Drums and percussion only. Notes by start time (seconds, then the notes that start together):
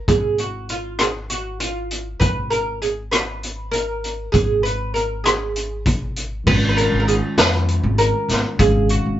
0.08 kick, closed hi-hat
0.38 closed hi-hat
0.69 closed hi-hat
0.99 cross-stick, closed hi-hat
1.30 closed hi-hat
1.60 closed hi-hat
1.91 closed hi-hat
2.21 kick, closed hi-hat
2.51 closed hi-hat
2.82 closed hi-hat
3.12 cross-stick, closed hi-hat
3.43 closed hi-hat
3.73 closed hi-hat
4.04 closed hi-hat
4.34 kick, closed hi-hat
4.65 closed hi-hat
4.95 closed hi-hat
5.26 cross-stick, closed hi-hat
5.56 closed hi-hat
5.86 kick, closed hi-hat
6.16 closed hi-hat
6.47 kick, crash
6.78 closed hi-hat
7.08 closed hi-hat
7.38 snare, closed hi-hat
7.68 closed hi-hat
7.98 closed hi-hat
8.29 snare, closed hi-hat
8.59 kick, closed hi-hat
8.89 closed hi-hat